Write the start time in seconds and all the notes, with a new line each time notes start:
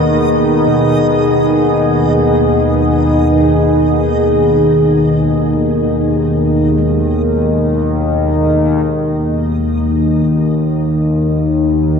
Already playing: D#2 D#3 B3 D#4 G#4 D#5
0.66 B2
6.78 G#3
8.84 D#2 D#3